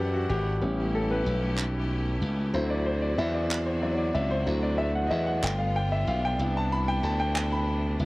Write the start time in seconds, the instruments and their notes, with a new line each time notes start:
Already playing: slap bass F#2, string section E3 D4 E4 F#5, grand piano D4 F#4 G4 A4 B4 D5 E5
0.13 grand piano F#4
0.29 slap bass G#1, grand piano G4
0.61 slap bass A1, grand piano G3 B3 C#4, string section A3 C#4 G4
0.95 grand piano A4
1.11 grand piano B4
1.26 slap bass B1
1.57 clap
2.22 slap bass C#2
2.53 slap bass D2, grand piano F#3 C4 E4 C5, string section C4 D4 F#4
2.70 grand piano D5
2.86 grand piano C5
3.02 grand piano D5
3.18 slap bass E2, grand piano E5
3.34 grand piano D5
3.51 clap
3.66 grand piano C5
3.82 grand piano F#3 C4 E4 D5
3.94 grand piano C#5
3.98 grand piano D5
4.15 slap bass C#2, grand piano E5
4.31 grand piano C5
4.46 slap bass D2, grand piano F#3 C4 E4, string section A3
4.63 grand piano D5
4.78 grand piano E5
4.95 grand piano F#5
5.07 grand piano D#5
5.11 slap bass E2, grand piano E5
5.26 grand piano F#5
5.43 slap bass G1, string section G3 B3 F4, grand piano A3 B3 F4 G5, clap
5.58 grand piano F5
5.76 grand piano G5
5.92 grand piano E5
6.07 slap bass B1, grand piano F5
6.25 grand piano G5
6.39 slap bass C2, string section C3 E4, grand piano B3 D4 E4
6.57 grand piano A5
6.72 grand piano B5
6.88 grand piano G5
7.03 slap bass D2, grand piano A5
7.20 grand piano G5
7.36 grand piano G5, clap
7.52 grand piano B5
7.99 slap bass C#2, grand piano B3 D4 E4